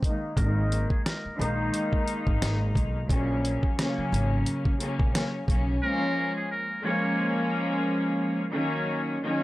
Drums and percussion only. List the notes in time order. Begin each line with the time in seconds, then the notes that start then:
0.03 kick, closed hi-hat
0.37 kick, closed hi-hat
0.72 closed hi-hat
0.90 kick
1.06 cross-stick, snare, closed hi-hat
1.42 closed hi-hat
1.74 closed hi-hat
1.93 kick
2.08 closed hi-hat
2.27 kick
2.42 cross-stick, snare, closed hi-hat
2.75 kick, closed hi-hat
3.09 kick, closed hi-hat
3.45 closed hi-hat
3.63 kick
3.79 cross-stick, snare, closed hi-hat
4.14 closed hi-hat
4.46 closed hi-hat
4.65 kick
4.80 closed hi-hat
4.99 kick
5.15 cross-stick, snare, closed hi-hat
5.48 kick, closed hi-hat